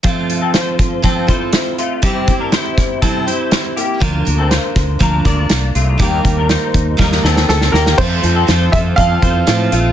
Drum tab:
CC |----------------|----------------|----------------|----------------|
HH |x-x-x-x-x-x-x-x-|x-x-x-x-x-x-x-x-|x-x-x-x-x-x-x-x-|x-x-x-x---------|
SD |----o-------o---|----o-o-----o---|----o-o-----o---|----o---oooooooo|
BD |o-----o-o-o-----|o-o---o-o-------|o-----o-o-o-----|o-o---o-o-------|

CC |x---------------|
HH |--x-x-x-x-x-x-x-|
SD |----o-------o---|
BD |o-----o-o-o-----|